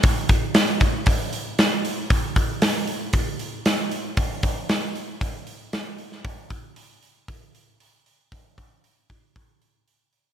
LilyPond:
\new DrumStaff \with { instrumentName = "Drums" } \drummode { \time 4/4 \tempo 4 = 116 <hho bd>8 <hho bd>8 <hho sn>8 <hho bd>8 <hho bd>8 hho8 <hho sn>8 hho8 | <hho bd>8 <hho bd>8 <hho sn>8 hho8 <hho bd>8 hho8 <hho sn>8 hho8 | <hho bd>8 <hho bd>8 <hho sn>8 hho8 <hho bd>8 hho8 <hho sn>8 hho16 sn16 | <hho bd>8 <hho bd>8 hho8 hho8 <hho bd>8 hho8 hho8 hho8 |
<hho bd>8 <hho bd>8 hho8 <hho bd>8 <hho bd>8 hho8 hho8 hho8 | }